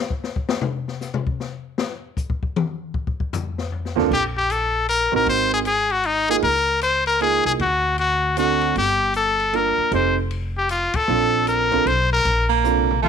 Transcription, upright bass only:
3.97 D2
4.11 A#1
5.13 A1
5.26 G#1
6.43 C#2
7.45 C2
7.59 D2
8.75 G1
9.78 muted upright bass stroke
9.91 F1
10.94 muted upright bass stroke
11.08 A#1
11.86 B1
12.25 A#1

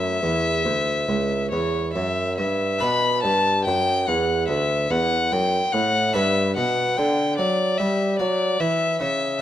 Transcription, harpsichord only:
Already playing: F#2 A3 C#4 E4
0.23 E2
0.65 D2
1.08 C#2
1.53 E2
1.96 F#2
2.38 G2
2.79 B2 D4 B4
3.25 G2
3.68 F#2
4.08 E2
4.48 D2
4.90 E2
5.32 F#2
5.73 A2
6.12 G2 D4 B4
6.56 B2
6.98 D3
7.38 F#3
7.80 G3
8.19 F#3
8.60 E3
9.00 C#3

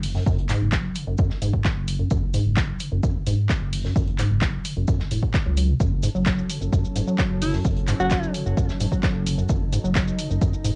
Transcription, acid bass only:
0.03 C#3
0.15 F#2
0.26 F#2
0.38 F#1
0.50 G#2
0.73 F#3
0.96 C#3
1.07 F#2
1.19 F#2
1.30 F#1
1.42 G#2
1.65 F#3
1.88 C#3
1.99 F#2
2.11 F#2
2.23 F#1
2.34 G#2
2.57 F#3
2.80 C#3
2.92 F#2
3.03 F#2
3.15 F#1
3.27 G#2
3.50 F#3
3.73 C#3
3.84 F#2
3.96 F#2
4.07 F#1
4.19 G#2
4.42 F#3
4.65 C#3
4.77 F#2
4.88 F#2
5.00 F#1
5.11 A2
5.34 F#3
5.46 F#3
5.57 F#3
5.69 B2
5.80 F#2
5.92 F#1
6.03 G#2
6.15 F#3
6.26 F#3
6.50 C#3
6.61 F#2
6.73 F#2
6.84 F#1
6.96 G#2
7.07 F#3
7.19 F#3
7.42 C#3
7.54 F#2
7.65 F#2
7.77 F#1
7.88 G#2
8.00 F#3
8.11 F#3
8.34 C#3
8.46 F#2
8.57 F#2
8.69 F#1
8.80 G#2
8.92 F#3
9.03 F#3
9.26 C#3
9.38 F#2
9.49 F#2
9.61 F#1
9.73 G#2
9.84 F#3
9.96 F#3
10.19 C#3
10.30 F#2
10.42 F#2
10.53 F#1
10.65 G#2

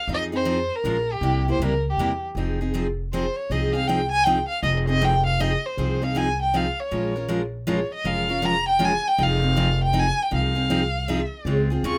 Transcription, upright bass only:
0.08 F2
0.84 A#1
1.21 C2
1.59 C#2
1.97 E2
2.35 F1
3.50 C2
4.63 F1
5.77 C2
6.92 A#1
8.04 F1
9.19 F1
10.32 C2
11.45 C#2
11.83 D#2

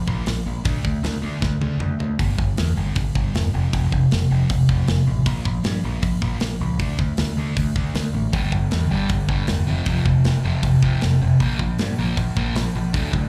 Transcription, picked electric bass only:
0.08 A#1
0.27 A#1
0.47 A#1
0.65 D2
0.85 D2
1.04 D2
1.24 D2
1.42 D2
1.62 D2
1.81 D2
2.00 D2
2.19 G1
2.38 G1
2.58 E2
2.77 G1
2.96 G1
3.16 G1
3.34 E1
3.54 F1
3.73 F1
3.93 F1
4.12 F1
4.31 F1
4.50 F1
4.69 F1
4.88 F1
5.07 A1
5.26 A#1
5.46 A#1
5.66 G2
5.85 A#1
6.03 A#1
6.22 A#1
6.42 A#1
6.61 C#2
6.80 D2
6.99 D2
7.19 D2
7.37 D2
7.57 D2
7.76 D2
7.95 D2
8.14 A1
8.34 G1
8.52 G1
8.72 E2
8.91 G1
9.10 G1
9.29 G1
9.48 E1
9.68 F1
9.86 F1
10.05 F1
10.25 F1
10.45 F1
10.63 F1
10.83 F1
11.02 F1
11.21 F1
11.40 A#1
11.59 A#1
11.80 G2
11.99 A#1
12.17 A#1
12.36 A#1
12.56 A#1
12.75 A#1
12.94 D2
13.13 D2

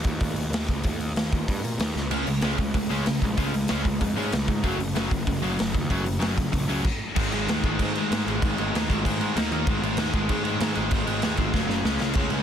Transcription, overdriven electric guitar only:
2.12 C#3 G#3 C#4
2.27 C#3 G#3
2.44 C#3 G#3 C#4
2.59 C#3 G#3
2.75 C#3 G#3
2.89 C#3 G#3 C#4
3.07 C#3 G#3
3.23 C#3 G#3
3.37 C#3 G#3 C#4
3.54 C#3 G#3
3.69 C#3 G#3 C#4
3.86 C#3 G#3
4.01 C#3 G#3
4.16 C#3 G#3 C#4
4.32 C#3 G#3
4.48 C#3 G#3
4.63 F#2 C#3 F#3
4.80 F#2 C#3
4.95 F#2 C#3 F#3
5.11 F#2 C#3
5.28 F#2 C#3
5.42 F#2 C#3 F#3
5.57 F#2 C#3
5.74 F#2 C#3
5.90 F#2 C#3 F#3
6.06 F#2 C#3
6.19 F#2 C#3 F#3
6.37 F#2 C#3
6.52 F#2 C#3
6.68 F#2 C#3 F#3
7.15 G#2 D#3 G#3
7.33 G#2 D#3 G#3
7.49 G#2 D#3 G#3
7.65 G#2 D#3 G#3
7.81 G#2 D#3 G#3
7.97 G#2 D#3 G#3
8.12 G#2 D#3 G#3
8.28 G#2 D#3 G#3
8.44 G#2 D#3 G#3
8.59 G#2 D#3 G#3
8.74 G#2 D#3 G#3
8.89 G#2 D#3 G#3
9.03 G#2 D#3 G#3
9.20 G#2 D#3 G#3
9.35 D#3 A#3 D#4
9.52 D#3 A#3 D#4
9.68 G#2 D#3 G#3
9.83 G#2 D#3 G#3
9.99 G#2 D#3 G#3
10.14 G#2 D#3 G#3
10.29 G#2 D#3 G#3
10.45 G#2 D#3 G#3
10.61 G#2 D#3 G#3
10.75 G#2 D#3 G#3
10.92 G#2 D#3 G#3
11.06 G#2 D#3 G#3
11.23 G#2 D#3 G#3
11.38 G#2 D#3 G#3
11.53 F#2 C#3 F#3
11.68 F#2 C#3 F#3
11.85 C#3 G#3 C#4
12.01 C#3 G#3 C#4
12.17 C#3 G#3 C#4
12.31 C#3 G#3 C#4

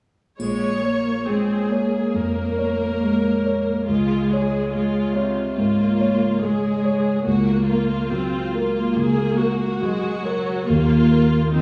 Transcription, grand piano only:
0.39 A#1
0.85 C#5
1.28 G#3
1.72 C#5
2.14 F2
2.58 C#5
3.03 G#3
3.46 C#5
3.88 C#2
4.33 C#5
4.74 G#3
5.16 C#5
5.58 G#2
6.01 C#5
6.43 G#3
6.85 C#5
7.26 C#2
7.69 A#4
8.11 F#3
8.55 A#4
8.96 C#3
9.39 A#4
9.82 F#3
10.25 A#4
10.69 D#2
11.12 A#4
11.56 F3

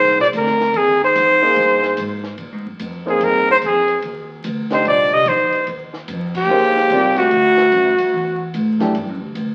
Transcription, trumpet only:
Already playing: C5
0.21 D5
0.37 A#4
0.77 G#4
1.04 C5
3.09 G#4
3.24 A#4
3.51 C5
3.66 G#4
4.73 C5
4.88 D5
5.14 D#5
5.28 C5
6.37 G4
7.18 F#4

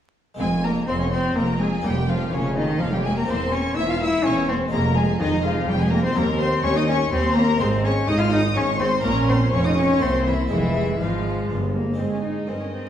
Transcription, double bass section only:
0.39 F1
0.88 F1
1.36 F1
1.85 F1
2.33 F1
2.81 F1
3.29 E1
3.76 E1
4.24 E1
4.72 F1
5.20 F1
5.68 F1
6.16 D#2
6.64 D#2
7.12 D#2
7.60 G#1
8.08 G#1
8.56 G#1
9.04 A#1
9.53 F1
10.02 C2
10.51 F1
11.01 G#1
11.50 G1

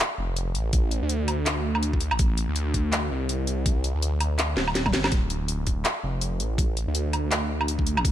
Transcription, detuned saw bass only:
0.18 F1
0.55 A1
1.02 D2
2.12 A1
2.48 D2
3.11 C2
3.95 D2
4.57 D1
4.94 G1
5.12 D1
6.04 F1
6.40 A1
6.87 D2
7.97 A1

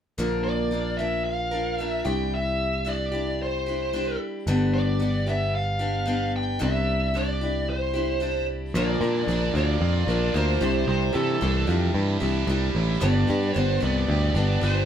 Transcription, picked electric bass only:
0.18 A#1
2.06 C2
4.47 G1
6.62 C2
8.74 A#1
9.01 A#2
9.28 A#1
9.54 D2
9.81 F2
10.07 A#1
10.34 D2
10.61 C2
10.88 C2
11.15 C3
11.42 C2
11.68 F2
11.94 G2
12.22 C2
12.47 C2
12.75 A1
13.02 G1
13.30 G2
13.56 G1
13.83 C2
14.08 D2
14.34 G1
14.62 G1

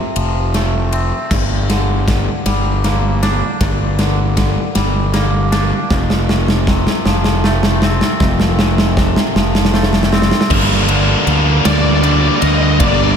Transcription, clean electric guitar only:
Already playing: F2 C3 A3 C4
0.16 F3
0.55 A3
0.93 C4
1.32 G2
1.70 D3
2.08 D3
2.46 G3
2.85 A#3
3.23 D4
3.61 G2
3.99 D3
4.38 D3
4.75 G3
5.13 A#3
5.52 D4
5.91 F2
6.29 C3
6.68 C3
7.06 F3
7.44 A3
7.83 C4
8.21 F2
8.59 C3
8.97 C3
9.36 F3
9.74 A3
10.12 C4

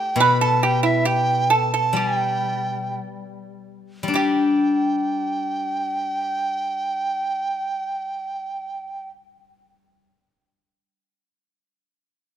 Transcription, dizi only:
Already playing: G5
0.22 B5
0.43 A5
0.63 G5
0.84 E5
1.06 G5
1.51 A5
1.75 A5
1.99 G#5
2.17 G5
4.16 G5

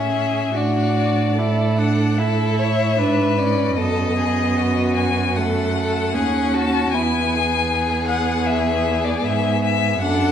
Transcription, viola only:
Already playing: C#4
0.56 D4
1.38 E4
1.79 D4
2.19 E4
2.99 D4
3.39 C#4
3.77 B3
5.37 A3
6.14 C#4
6.94 B3
10.03 D4

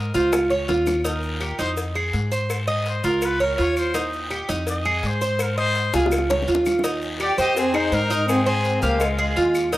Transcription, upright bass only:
0.15 C#2
0.69 D#2
1.59 F2
2.14 G#2
3.04 C#2
3.59 D#2
4.49 F2
5.03 G#2
5.93 C#2
6.48 D#2
7.38 F2
7.92 G#2
8.82 C#2
9.37 D#2

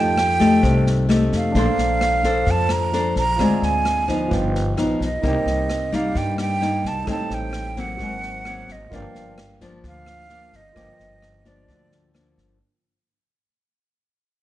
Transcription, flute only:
Already playing: G5
1.36 F5
2.51 A5
2.72 A#5
3.18 A#5
3.64 G#5
5.03 D#5
5.95 F5
6.17 G5
6.40 G5
6.87 A5
7.10 A5
7.34 G5
7.80 F#5
8.72 D#5
8.95 F5
9.87 F5
10.56 D#5
11.48 D5

